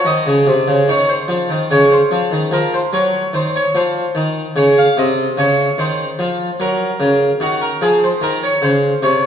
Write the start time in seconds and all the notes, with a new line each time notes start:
0.05 D#3 D#5
0.27 C#3
0.47 C3
0.68 C#3
0.88 D#3 C#5
1.09 C5
1.28 F3
1.49 D#3
1.71 C#3 C#5
1.92 C5
2.11 F3
2.31 D#3
2.51 F3 A#4
2.74 C5
2.93 F#3 C#5
3.33 D#3 C5
3.56 C#5
3.75 F3 C5
4.15 D#3
4.56 C#3 C#5
4.78 F5
4.97 C3 D#5
5.37 C#3 C#5
5.78 D#3 C5
6.19 F3
6.60 F#3 A#4
7.00 C#3
7.40 D#3 F#4
7.61 A#4
7.82 F3 G#4
8.04 C5
8.21 D#3 A#4
8.43 C#5
8.62 C#3 C5
9.03 C3 C#5